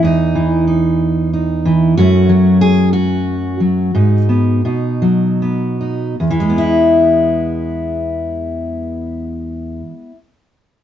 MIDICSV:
0, 0, Header, 1, 2, 480
1, 0, Start_track
1, 0, Key_signature, 4, "major"
1, 0, Tempo, 643777
1, 36, Time_signature, 3, 2, 24, 8
1, 2436, Tempo, 689655
1, 3396, Tempo, 773196
1, 5796, Tempo, 790514
1, 7207, End_track
2, 0, Start_track
2, 0, Title_t, "Steel-string acoustic guitar"
2, 0, Program_c, 0, 25
2, 21, Note_on_c, 0, 40, 81
2, 34, Note_on_c, 0, 63, 80
2, 263, Note_on_c, 0, 52, 66
2, 494, Note_off_c, 0, 63, 0
2, 503, Note_on_c, 0, 63, 48
2, 983, Note_off_c, 0, 63, 0
2, 995, Note_on_c, 0, 63, 52
2, 1221, Note_off_c, 0, 52, 0
2, 1234, Note_on_c, 0, 52, 67
2, 1442, Note_off_c, 0, 52, 0
2, 1442, Note_off_c, 0, 63, 0
2, 1459, Note_off_c, 0, 40, 0
2, 1472, Note_on_c, 0, 66, 103
2, 1478, Note_on_c, 0, 42, 89
2, 1482, Note_on_c, 0, 54, 55
2, 1488, Note_on_c, 0, 57, 59
2, 1494, Note_on_c, 0, 61, 58
2, 1700, Note_off_c, 0, 54, 0
2, 1708, Note_on_c, 0, 54, 67
2, 1945, Note_off_c, 0, 66, 0
2, 1948, Note_on_c, 0, 68, 108
2, 2181, Note_off_c, 0, 68, 0
2, 2184, Note_on_c, 0, 66, 90
2, 2661, Note_off_c, 0, 54, 0
2, 2669, Note_on_c, 0, 54, 56
2, 2878, Note_off_c, 0, 54, 0
2, 2884, Note_off_c, 0, 42, 0
2, 2888, Note_off_c, 0, 57, 0
2, 2891, Note_off_c, 0, 61, 0
2, 2908, Note_on_c, 0, 44, 79
2, 2912, Note_on_c, 0, 63, 53
2, 3148, Note_on_c, 0, 59, 60
2, 3366, Note_off_c, 0, 59, 0
2, 3367, Note_off_c, 0, 44, 0
2, 3369, Note_off_c, 0, 63, 0
2, 3398, Note_on_c, 0, 47, 64
2, 3402, Note_on_c, 0, 63, 48
2, 3627, Note_on_c, 0, 54, 65
2, 3876, Note_on_c, 0, 59, 44
2, 4109, Note_off_c, 0, 63, 0
2, 4116, Note_on_c, 0, 63, 46
2, 4323, Note_off_c, 0, 47, 0
2, 4324, Note_off_c, 0, 54, 0
2, 4327, Note_off_c, 0, 63, 0
2, 4329, Note_off_c, 0, 59, 0
2, 4348, Note_off_c, 0, 66, 0
2, 4360, Note_on_c, 0, 40, 70
2, 4426, Note_on_c, 0, 52, 66
2, 4485, Note_on_c, 0, 56, 67
2, 4545, Note_on_c, 0, 59, 58
2, 4596, Note_on_c, 0, 64, 83
2, 6582, Note_off_c, 0, 40, 0
2, 6646, Note_off_c, 0, 52, 0
2, 6704, Note_off_c, 0, 56, 0
2, 6763, Note_off_c, 0, 59, 0
2, 6788, Note_off_c, 0, 64, 0
2, 7207, End_track
0, 0, End_of_file